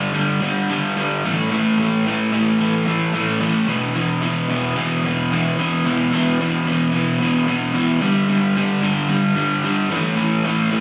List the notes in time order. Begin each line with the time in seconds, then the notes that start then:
Already playing: G2 D3 G3
0.13 G2 D3 G3
0.41 G2 D3 G3
0.68 G2 D3 G3
0.96 G2 D3 G3
1.24 A2 E3 A3
1.50 A2 E3 A3
1.78 A2 E3 A3
2.05 A2 E3 A3
2.32 A2 E3 A3
2.59 A2 E3 A3
2.86 A2 E3 A3
3.14 A2 E3 A3
3.40 A2 E3 A3
3.66 E2 B2 E3
3.94 E2 B2 E3
4.21 E2 B2 E3
4.49 E2 B2 E3
4.75 E2 B2 E3
5.03 E2 B2 E3
5.31 E2 B2 E3
5.57 E2 B2 E3
5.85 E2 B2 E3
6.12 E2 B2 E3
6.39 E2 B2 E3
6.64 E2 B2 E3
6.92 E2 B2 E3
7.20 E2 B2 E3
7.47 E2 B2 E3
7.73 E2 B2 E3
8.01 G2 D3 G3
8.28 G2 D3 G3
8.55 G2 D3 G3
8.82 G2 D3 G3
9.09 G2 D3 G3
9.35 G2 D3 G3
9.63 G2 D3 G3
9.90 A2 E3 A3
10.16 A2 E3 A3
10.43 A2 E3 A3
10.70 A2 E3 A3